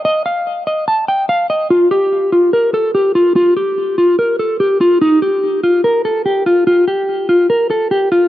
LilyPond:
\new Staff \with { instrumentName = "Clean electric guitar" } { \time 4/4 \key f \mixolydian \tempo 4 = 145 ees''8 f''4 ees''8 a''8 g''8 f''8 ees''8 | f'8 g'4 f'8 bes'8 a'8 g'8 f'8 | f'8 g'4 f'8 bes'8 a'8 g'8 f'8 | ees'8 g'4 f'8 bes'8 a'8 g'8 f'8 |
f'8 g'4 f'8 bes'8 a'8 g'8 f'8 | }